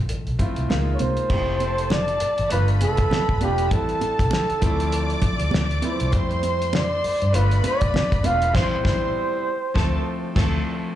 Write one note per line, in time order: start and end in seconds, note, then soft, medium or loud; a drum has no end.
0.00 0.39 A3 medium
0.00 0.40 C4 medium
0.00 0.40 E4 medium
0.00 0.41 F4 medium
0.09 0.25 A1 medium
0.09 closed hi-hat medium
0.27 0.38 B1 medium
0.27 closed hi-hat soft
0.39 0.69 A3 medium
0.39 0.70 C4 medium
0.39 0.70 E4 medium
0.39 0.69 F4 medium
0.39 kick medium
0.39 closed hi-hat medium
0.39 muted conga soft
0.39 low conga medium
0.56 0.68 C2 medium
0.56 closed hi-hat soft
0.69 0.96 C#2 medium
0.69 1.19 G#3 medium
0.69 1.20 A#3 medium
0.69 1.20 D#4 medium
0.69 1.21 F4 medium
0.69 snare medium
0.69 high conga medium
0.94 1.02 C#5 medium
0.99 1.16 C2 medium
0.99 1.93 C5 medium
0.99 closed hi-hat medium
0.99 high conga medium
1.17 closed hi-hat soft
1.29 2.17 F1 medium
1.29 2.08 A3 medium
1.29 2.09 C4 medium
1.29 2.09 E4 medium
1.29 2.10 G4 medium
1.29 2.48 A4 medium
1.29 2.48 A5 medium
1.29 kick medium
1.29 crash medium
1.29 muted conga soft
1.60 closed hi-hat soft
1.60 muted conga soft
1.78 closed hi-hat soft
1.90 2.51 D5 medium
1.90 snare loud
1.90 high conga medium
2.08 closed hi-hat soft
2.20 muted fingered electric bass stroke soft
2.20 closed hi-hat medium
2.38 2.54 A1 medium
2.38 closed hi-hat soft
2.50 2.83 G1 loud
2.50 3.25 A3 medium
2.50 3.25 B3 medium
2.50 3.25 D4 medium
2.50 3.26 F4 medium
2.50 3.69 B4 medium
2.50 2.65 B4 medium
2.50 3.69 B5 medium
2.50 closed hi-hat medium
2.68 closed hi-hat soft
2.81 3.08 F1 medium
2.81 3.38 A4 loud
2.81 closed hi-hat medium
2.81 muted conga soft
2.97 kick medium
2.97 closed hi-hat soft
3.11 snare loud
3.11 high conga medium
3.29 3.40 G1 medium
3.29 kick medium
3.41 3.68 E1 medium
3.41 3.62 A3 medium
3.41 3.62 B3 medium
3.41 3.63 D4 medium
3.41 3.63 F4 medium
3.41 3.74 G4 medium
3.41 closed hi-hat medium
3.41 high conga medium
3.58 closed hi-hat medium
3.71 3.98 A1 loud
3.71 4.50 G3 medium
3.71 4.50 B3 medium
3.71 4.51 C4 medium
3.71 4.51 E4 medium
3.71 4.61 A4 medium
3.71 5.53 A4 medium
3.71 4.60 A5 medium
3.71 kick medium
3.71 closed hi-hat medium
3.89 closed hi-hat soft
4.01 closed hi-hat medium
4.01 muted conga soft
4.19 4.31 B1 medium
4.19 kick medium
4.19 closed hi-hat medium
4.31 snare loud
4.31 high conga medium
4.50 muted fingered electric bass stroke soft
4.50 closed hi-hat soft
4.61 5.14 D2 medium
4.61 5.59 F3 medium
4.61 5.60 A3 medium
4.61 5.60 C4 medium
4.61 5.60 E4 loud
4.61 6.10 D5 medium
4.61 6.10 D6 medium
4.61 kick medium
4.61 closed hi-hat medium
4.61 low conga medium
4.80 closed hi-hat medium
4.92 closed hi-hat medium
5.10 closed hi-hat soft
5.22 muted fingered electric bass stroke soft
5.22 kick medium
5.22 closed hi-hat medium
5.22 muted conga soft
5.22 low conga medium
5.40 5.51 D2 medium
5.40 closed hi-hat soft
5.51 5.79 D2 medium
5.51 snare loud
5.51 high conga medium
5.71 closed hi-hat soft
5.82 6.03 F3 medium
5.82 6.04 A3 medium
5.82 6.04 C4 medium
5.82 6.05 E4 medium
5.82 6.76 C5 medium
5.82 closed hi-hat medium
5.82 high conga medium
6.00 6.12 C2 medium
6.00 closed hi-hat medium
6.12 7.00 F2 medium
6.12 6.92 G3 medium
6.12 6.92 A3 medium
6.12 6.92 C4 medium
6.12 6.93 E4 medium
6.12 7.31 C5 medium
6.12 7.32 C6 medium
6.12 kick medium
6.12 closed hi-hat medium
6.12 muted conga soft
6.31 closed hi-hat soft
6.43 closed hi-hat medium
6.43 muted conga soft
6.62 closed hi-hat soft
6.73 7.37 D5 medium
6.73 snare loud
6.73 high conga medium
7.04 muted fingered electric bass stroke soft
7.04 open hi-hat medium
7.22 7.33 G2 medium
7.22 closed hi-hat soft
7.33 7.60 G1 loud
7.33 8.08 A3 medium
7.33 8.08 B3 medium
7.33 8.08 D4 medium
7.33 8.09 F4 medium
7.33 8.52 B4 medium
7.33 7.65 B4 medium
7.33 8.52 B5 medium
7.33 closed hi-hat medium
7.51 closed hi-hat soft
7.64 8.27 D5 medium
7.64 closed hi-hat medium
7.64 muted conga soft
7.81 7.93 F1 medium
7.81 kick medium
7.81 closed hi-hat soft
7.94 snare loud
7.94 high conga medium
8.12 8.23 G1 medium
8.12 kick medium
8.12 closed hi-hat soft
8.23 8.51 E1 medium
8.23 8.45 A3 medium
8.23 8.45 B3 medium
8.23 8.46 D4 medium
8.23 8.46 F4 medium
8.23 8.57 F5 medium
8.23 closed hi-hat medium
8.23 high conga medium
8.42 closed hi-hat medium
8.53 8.76 A1 medium
8.53 8.75 G3 medium
8.53 8.76 B3 loud
8.53 8.76 C4 medium
8.53 8.77 E4 medium
8.53 8.76 C5 medium
8.53 10.36 C5 loud
8.53 8.76 C6 medium
8.53 kick loud
8.53 snare loud
8.53 crash medium
8.84 9.07 A1 medium
8.84 9.06 G3 medium
8.84 9.06 B3 medium
8.84 9.07 C4 medium
8.84 9.07 E4 loud
8.84 9.07 C5 medium
8.84 9.07 C6 loud
8.84 kick loud
8.84 snare loud
9.74 9.97 D2 loud
9.74 9.96 F3 loud
9.74 9.97 A3 loud
9.74 9.97 C4 loud
9.74 9.97 A4 medium
9.74 9.97 A5 loud
9.74 kick medium
9.74 snare medium
10.35 10.58 D2 loud
10.35 10.57 F3 medium
10.35 10.58 A3 loud
10.35 10.58 C4 medium
10.35 10.58 A4 medium
10.35 10.58 A5 medium
10.35 kick loud
10.35 snare medium
10.35 crash medium